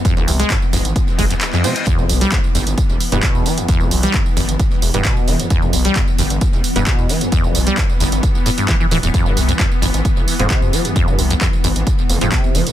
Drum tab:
HH |x-oxx-oxx-oxx-ox|x-oxx-oxx-oxx-ox|x-oxx-oxx-oxx-ox|x-oxx-oxx-oxx-ox|
TB |xxxxxxxxxxxxxxxx|xxxxxxxxxxxxxxxx|xxxxxxxxxxxxxxxx|xxxxxxxxxxxxxxxx|
CP |----x-------xx--|----x-------x---|----x-------x---|----x-------x---|
BD |o---o---o-o-----|o---o---o---o---|o---o---o---o---|o---o---o---o---|

HH |x-oxx-oxx-oxx-ox|x-oxx-oxx-oxx-ox|x-oxx-oxx-oxx-ox|
TB |xxxxxxxxxxxxxxxx|xxxxxxxxxxxxxxxx|xxxxxxxxxxxxxxxx|
CP |----x-------x---|----x-------x---|----x-------x---|
BD |o---o---o---o---|o---o---o---o---|o---o---o---o---|